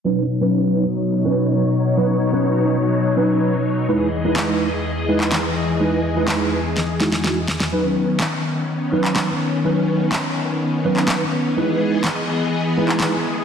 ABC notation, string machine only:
X:1
M:4/4
L:1/8
Q:1/4=125
K:B
V:1 name="String machine"
[B,,F,Dc]8- | [B,,F,Dc]8 | [E,,E,Gd]8- | [E,,E,Gd]8 |
[D,B,C]8- | [D,B,C]8 | [E,Gd]8 |]